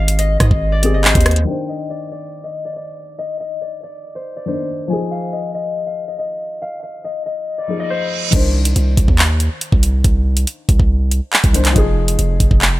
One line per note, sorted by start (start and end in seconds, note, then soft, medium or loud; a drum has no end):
0.00 0.38 G#1 loud
0.00 0.79 C4 medium
0.00 0.78 G4 medium
0.00 0.81 G#4 loud
0.00 0.18 D#5 medium
0.00 1.64 F5 medium
0.08 closed hi-hat medium
0.19 0.40 D#5 medium
0.19 closed hi-hat medium
0.40 0.50 G#2 loud
0.40 0.78 D#5 medium
0.40 kick loud
0.40 cross-stick medium
0.40 closed hi-hat medium
0.51 0.95 G#1 loud
0.51 kick loud
0.72 1.00 D5 medium
0.82 1.48 C4 medium
0.82 1.47 G4 medium
0.82 1.48 G#4 medium
0.82 closed hi-hat medium
0.94 1.06 G1 loud
0.94 1.68 D#5 medium
1.04 1.15 G#1 loud
1.04 3.03 C5 medium
1.04 clap loud
1.15 1.46 D#2 loud
1.15 kick loud
1.15 closed hi-hat medium
1.21 closed hi-hat medium
1.26 cross-stick loud
1.26 closed hi-hat medium
1.26 open hi-hat medium
1.31 closed hi-hat soft
1.36 closed hi-hat medium
1.45 4.42 D#3 medium
1.45 4.43 D4 medium
1.45 3.02 G5 medium
1.50 4.45 C5 medium
1.69 1.96 D#5 medium
1.90 2.11 D5 medium
2.12 2.50 D5 medium
2.44 2.71 D#5 medium
2.65 2.76 D5 medium
2.76 3.25 D5 medium
3.19 3.40 D#5 loud
3.40 3.67 D#5 medium
3.61 3.83 D5 medium
3.83 4.36 D5 medium
4.15 4.47 C5 medium
4.36 5.39 D5 medium
4.46 4.89 D#3 medium
4.46 4.90 D4 soft
4.46 6.45 C5 medium
4.46 4.91 C5 medium
4.88 7.63 F3 medium
4.88 7.65 D#4 medium
4.88 6.40 G#5 loud
4.93 7.66 G#4 medium
5.11 5.86 F5 medium
5.33 5.54 D#5 medium
5.54 6.07 D#5 medium
5.87 6.61 F5 medium
6.08 6.18 D#5 medium
6.19 7.04 D#5 medium
6.62 6.83 F5 loud
6.83 8.49 F5 medium
7.04 7.26 D#5 medium
7.26 7.64 D#5 medium
7.47 reverse cymbal medium
7.58 7.86 D5 medium
7.68 8.32 F3 soft
7.68 8.33 D#4 soft
7.68 8.34 G#4 soft
7.80 9.58 D#5 medium
7.90 9.88 C5 medium
8.31 8.74 C2 loud
8.31 11.49 D#3 medium
8.31 11.51 D4 medium
8.31 kick loud
8.31 closed hi-hat medium
8.31 crash loud
8.36 11.52 C5 medium
8.65 closed hi-hat medium
8.76 8.96 C2 loud
8.76 closed hi-hat medium
8.97 9.08 C2 loud
8.97 kick medium
8.97 closed hi-hat medium
9.08 9.49 D#2 loud
9.08 kick medium
9.19 clap loud
9.40 closed hi-hat medium
9.61 closed hi-hat medium
9.72 10.03 C2 loud
9.72 kick medium
9.83 closed hi-hat medium
10.04 10.46 C2 loud
10.04 kick loud
10.04 closed hi-hat medium
10.37 closed hi-hat medium
10.47 closed hi-hat medium
10.69 10.79 C2 loud
10.69 kick medium
10.69 closed hi-hat medium
10.80 11.21 C2 loud
10.80 kick loud
11.11 closed hi-hat medium
11.33 clap loud
11.44 11.75 C2 loud
11.44 kick medium
11.44 closed hi-hat medium
11.53 11.75 D#3 medium
11.53 11.76 D4 medium
11.53 11.76 C5 medium
11.53 closed hi-hat medium
11.65 clap medium
11.65 closed hi-hat medium
11.73 12.17 F1 loud
11.73 12.80 F3 medium
11.73 12.80 D#4 medium
11.73 kick loud
11.73 closed hi-hat medium
11.78 12.80 G#4 loud
12.08 closed hi-hat medium
12.19 12.39 F1 loud
12.19 closed hi-hat medium
12.40 12.50 F1 loud
12.40 kick medium
12.40 closed hi-hat medium
12.51 12.80 F1 loud
12.51 kick loud
12.62 clap loud